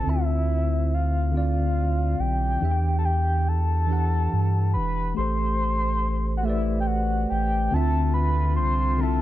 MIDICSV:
0, 0, Header, 1, 5, 480
1, 0, Start_track
1, 0, Tempo, 851064
1, 33, Time_signature, 6, 3, 24, 8
1, 5198, End_track
2, 0, Start_track
2, 0, Title_t, "Soft synth lead"
2, 0, Program_c, 0, 80
2, 0, Note_on_c, 0, 81, 98
2, 51, Note_on_c, 0, 76, 106
2, 60, Note_off_c, 0, 81, 0
2, 531, Note_on_c, 0, 77, 90
2, 540, Note_off_c, 0, 76, 0
2, 762, Note_off_c, 0, 77, 0
2, 774, Note_on_c, 0, 77, 96
2, 1239, Note_on_c, 0, 79, 96
2, 1247, Note_off_c, 0, 77, 0
2, 1676, Note_off_c, 0, 79, 0
2, 1684, Note_on_c, 0, 81, 61
2, 1718, Note_on_c, 0, 79, 89
2, 1726, Note_off_c, 0, 81, 0
2, 1962, Note_on_c, 0, 81, 109
2, 1971, Note_off_c, 0, 79, 0
2, 2668, Note_off_c, 0, 81, 0
2, 2672, Note_on_c, 0, 83, 98
2, 2896, Note_off_c, 0, 83, 0
2, 2915, Note_on_c, 0, 84, 120
2, 3572, Note_off_c, 0, 84, 0
2, 3593, Note_on_c, 0, 78, 66
2, 3635, Note_on_c, 0, 76, 100
2, 3643, Note_off_c, 0, 78, 0
2, 3831, Note_off_c, 0, 76, 0
2, 3835, Note_on_c, 0, 79, 74
2, 3872, Note_on_c, 0, 78, 91
2, 3880, Note_off_c, 0, 79, 0
2, 4112, Note_off_c, 0, 78, 0
2, 4116, Note_on_c, 0, 79, 103
2, 4363, Note_on_c, 0, 81, 115
2, 4371, Note_off_c, 0, 79, 0
2, 4587, Note_off_c, 0, 81, 0
2, 4590, Note_on_c, 0, 83, 104
2, 4815, Note_off_c, 0, 83, 0
2, 4829, Note_on_c, 0, 84, 107
2, 5077, Note_on_c, 0, 81, 117
2, 5085, Note_off_c, 0, 84, 0
2, 5198, Note_off_c, 0, 81, 0
2, 5198, End_track
3, 0, Start_track
3, 0, Title_t, "Tine electric piano"
3, 0, Program_c, 1, 4
3, 0, Control_c, 1, 64, 127
3, 0, Note_on_c, 1, 50, 63
3, 0, Note_on_c, 1, 60, 54
3, 0, Note_on_c, 1, 65, 60
3, 0, Note_on_c, 1, 72, 66
3, 17, Note_off_c, 1, 50, 0
3, 17, Note_on_c, 1, 50, 66
3, 31, Note_off_c, 1, 60, 0
3, 31, Note_on_c, 1, 60, 68
3, 40, Note_on_c, 1, 64, 45
3, 51, Note_on_c, 1, 76, 73
3, 73, Note_off_c, 1, 64, 0
3, 76, Note_off_c, 1, 65, 0
3, 76, Note_on_c, 1, 65, 63
3, 533, Note_off_c, 1, 50, 0
3, 540, Note_off_c, 1, 60, 0
3, 549, Note_off_c, 1, 76, 0
3, 562, Note_off_c, 1, 65, 0
3, 739, Note_on_c, 1, 50, 67
3, 754, Note_on_c, 1, 60, 59
3, 765, Note_on_c, 1, 65, 59
3, 774, Note_on_c, 1, 74, 74
3, 1254, Note_off_c, 1, 50, 0
3, 1261, Note_off_c, 1, 60, 0
3, 1267, Note_off_c, 1, 65, 0
3, 1271, Note_off_c, 1, 74, 0
3, 1465, Note_on_c, 1, 52, 68
3, 1474, Note_on_c, 1, 62, 62
3, 1481, Control_c, 1, 64, 0
3, 1482, Note_on_c, 1, 67, 71
3, 1483, Note_off_c, 1, 72, 0
3, 1494, Note_on_c, 1, 76, 62
3, 1520, Note_off_c, 1, 76, 0
3, 1531, Note_on_c, 1, 79, 82
3, 1573, Control_c, 1, 64, 127
3, 1976, Note_off_c, 1, 52, 0
3, 1981, Note_off_c, 1, 62, 0
3, 1985, Note_off_c, 1, 67, 0
3, 2009, Note_off_c, 1, 79, 0
3, 2179, Note_on_c, 1, 52, 60
3, 2193, Note_on_c, 1, 62, 57
3, 2203, Note_on_c, 1, 67, 58
3, 2213, Note_on_c, 1, 78, 68
3, 2693, Note_off_c, 1, 52, 0
3, 2700, Note_off_c, 1, 62, 0
3, 2705, Note_off_c, 1, 67, 0
3, 2711, Note_off_c, 1, 78, 0
3, 2900, Note_on_c, 1, 57, 68
3, 2912, Note_on_c, 1, 67, 64
3, 2921, Control_c, 1, 64, 0
3, 2923, Note_on_c, 1, 69, 65
3, 2935, Note_on_c, 1, 72, 80
3, 3011, Control_c, 1, 64, 127
3, 3414, Note_off_c, 1, 57, 0
3, 3420, Note_off_c, 1, 67, 0
3, 3425, Note_off_c, 1, 69, 0
3, 3431, Note_off_c, 1, 72, 0
3, 3628, Note_on_c, 1, 57, 86
3, 3640, Note_on_c, 1, 67, 72
3, 3653, Note_on_c, 1, 71, 68
3, 3663, Note_on_c, 1, 74, 86
3, 4138, Note_off_c, 1, 57, 0
3, 4144, Note_off_c, 1, 67, 0
3, 4150, Note_off_c, 1, 71, 0
3, 4155, Note_off_c, 1, 74, 0
3, 4346, Note_on_c, 1, 50, 75
3, 4355, Note_on_c, 1, 60, 75
3, 4360, Control_c, 1, 64, 0
3, 4367, Note_on_c, 1, 65, 69
3, 4377, Note_on_c, 1, 76, 86
3, 4470, Control_c, 1, 64, 127
3, 4857, Note_off_c, 1, 50, 0
3, 4861, Note_off_c, 1, 60, 0
3, 4867, Note_off_c, 1, 65, 0
3, 4873, Note_off_c, 1, 76, 0
3, 5062, Note_on_c, 1, 50, 69
3, 5070, Note_on_c, 1, 60, 70
3, 5081, Note_on_c, 1, 64, 59
3, 5093, Note_on_c, 1, 76, 82
3, 5114, Note_off_c, 1, 64, 0
3, 5117, Note_on_c, 1, 65, 66
3, 5198, Note_off_c, 1, 50, 0
3, 5198, Note_off_c, 1, 60, 0
3, 5198, Note_off_c, 1, 65, 0
3, 5198, Note_off_c, 1, 76, 0
3, 5198, End_track
4, 0, Start_track
4, 0, Title_t, "Woodwind section"
4, 0, Program_c, 2, 71
4, 4343, Note_on_c, 2, 65, 94
4, 4345, Note_on_c, 2, 50, 75
4, 4345, Note_on_c, 2, 60, 84
4, 4345, Note_on_c, 2, 62, 81
4, 5198, Note_off_c, 2, 50, 0
4, 5198, Note_off_c, 2, 60, 0
4, 5198, Note_off_c, 2, 62, 0
4, 5198, Note_off_c, 2, 65, 0
4, 5198, End_track
5, 0, Start_track
5, 0, Title_t, "Analog synth bass"
5, 0, Program_c, 3, 38
5, 35, Note_on_c, 3, 38, 111
5, 1212, Note_off_c, 3, 38, 0
5, 1237, Note_on_c, 3, 35, 94
5, 1452, Note_off_c, 3, 35, 0
5, 1477, Note_on_c, 3, 40, 100
5, 2413, Note_off_c, 3, 40, 0
5, 2442, Note_on_c, 3, 43, 89
5, 2682, Note_on_c, 3, 28, 82
5, 2690, Note_off_c, 3, 43, 0
5, 2895, Note_off_c, 3, 28, 0
5, 2920, Note_on_c, 3, 33, 106
5, 4094, Note_off_c, 3, 33, 0
5, 4123, Note_on_c, 3, 33, 90
5, 4335, Note_off_c, 3, 33, 0
5, 4358, Note_on_c, 3, 38, 119
5, 4842, Note_on_c, 3, 36, 92
5, 4851, Note_off_c, 3, 38, 0
5, 5198, Note_off_c, 3, 36, 0
5, 5198, End_track
0, 0, End_of_file